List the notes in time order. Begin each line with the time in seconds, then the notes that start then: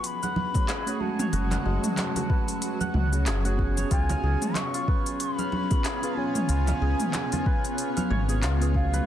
Already playing: F#3 B3 C#4 F#4 G#4 B4 C#5 F#5
0.03 B5 C#6, open hi-hat, shaker
0.23 F#5, muted conga, shaker
0.36 muted conga, high conga
0.54 A3 C#4 F#4 G#4 C#5, kick, open hi-hat, muted conga, shaker
0.68 G#4, clap, open hi-hat, shaker
0.86 A3 C#4 F#4 G#4 C#5, open hi-hat, shaker
0.98 G#3 A3 C#4 F#4 A5, high conga
1.02 F#5
1.19 C#5, mid tom, open hi-hat, shaker
1.33 F#1 F#4, open hi-hat, shaker
1.51 F#5, clap, open hi-hat, muted conga, low conga, shaker
1.65 F#1 G#3
1.84 mid tom, open hi-hat, shaker
1.97 clap, open hi-hat, muted conga, shaker
2.16 F#4, open hi-hat, high conga, low conga, shaker
2.30 B4, kick
2.48 open hi-hat, shaker
2.62 open hi-hat, shaker
2.81 F#5, muted conga, high conga, shaker
2.94 C#2, mid tom
3.12 A3 C#4 F#4 G#4 C#5, open hi-hat, shaker
3.26 F#1 G#4, clap, open hi-hat, shaker
3.44 A3 C#4 F#4 G#4 C#5, open hi-hat, shaker
3.56 B3 C#4 G#4, kick, muted conga, high conga
3.60 C#5
3.77 C#5, open hi-hat, muted conga, shaker
3.91 C#2 B3 F4 G#5, kick, open hi-hat, shaker
4.09 F5, open hi-hat, muted conga, low conga, shaker
4.23 C#2 G#4
4.42 mid tom, open hi-hat, shaker
4.55 C#6, clap, open hi-hat, muted conga, shaker
4.74 F4, open hi-hat, shaker
4.88 B4, kick
5.06 open hi-hat, shaker
5.20 B5, open hi-hat, shaker
5.39 F5, muted conga, shaker
5.52 muted conga, high conga
5.70 B3 C#4 F4 G#4 B4, kick, open hi-hat, muted conga, shaker
5.84 G#4, clap, open hi-hat, shaker
6.02 B3 C#4 F4 G#4 B4, open hi-hat, shaker
6.14 B3 C#4 F4 G#4 G#5, high conga
6.18 C#5
6.35 C#5, mid tom, open hi-hat, shaker
6.49 C#2 F4, open hi-hat, shaker
6.67 F5, clap, open hi-hat, muted conga, low conga, shaker
6.81 C#2 G#4
7.00 mid tom, open hi-hat, shaker
7.13 clap, open hi-hat, muted conga, shaker
7.32 F4, open hi-hat, high conga, low conga, shaker
7.46 B4, kick
7.65 open hi-hat, shaker
7.78 open hi-hat, shaker
7.97 F5, open hi-hat, muted conga, high conga, shaker
8.10 G#1 C#5, mid tom
8.28 B3 C#4 F4 G#4 B4, open hi-hat, shaker
8.42 C#2 F4, clap, open hi-hat, shaker
8.60 B3 C#4 F4 G#4 B4, open hi-hat, shaker
8.73 G#3 A3 C#4 F#4 F5, kick, muted conga, high conga
8.93 B4, open hi-hat, muted conga, shaker